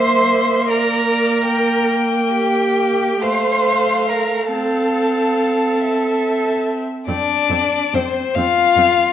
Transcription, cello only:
Already playing: C5
0.69 A#4
2.32 G4
3.23 C5
4.09 A#4
4.51 A4
7.08 F2
7.49 F2
7.94 F2
8.36 F2
8.77 F2

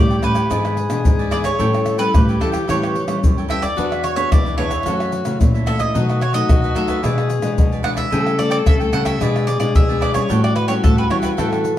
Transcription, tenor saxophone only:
Already playing: G4
0.50 G#4
1.59 A4
2.14 G4
3.77 F#4
4.32 E4
4.86 F#4
5.40 E4
5.95 F#4
7.03 G#4
8.13 A4
9.21 G#4
10.30 F#4

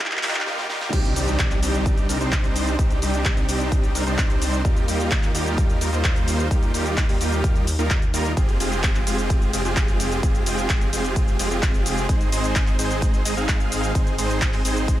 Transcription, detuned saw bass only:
0.93 C2
1.16 C2
1.51 C2
1.63 C2
2.09 C2
2.21 C2
2.79 C2
3.02 C2
3.37 C2
3.49 C2
3.95 C2
4.07 C2
4.65 D#2
4.88 D#2
5.23 D#2
5.35 D#2
5.81 D#2
5.93 D#2
6.51 D#2
6.74 D#2
7.09 D#2
7.21 D#2
7.79 D#2
8.14 D#2
8.37 F1
8.60 F1
8.95 F1
9.07 F1
9.53 F1
9.65 F1
10.23 F1
10.46 F1
10.81 F1
10.93 F1
11.39 F1
11.51 F1
12.09 G#1
12.32 G#1
12.67 G#1
12.79 G#1
13.25 G#1
13.37 G#1
13.95 G#1
14.18 G#1
14.53 G#1
14.65 G#1

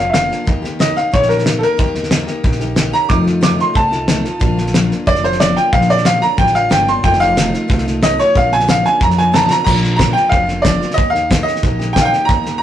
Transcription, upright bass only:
Already playing: F1
0.47 D#2
1.14 A#1
1.79 D#2
2.44 A#1
3.10 F2
3.76 C2
4.41 A#1
5.07 F1
5.72 A#1
6.38 A1
6.71 G1
7.04 F1
7.70 C2
8.36 A#1
9.01 F2
9.67 A#1
10.32 F1
10.98 D#2
11.64 A#1
12.29 D#2

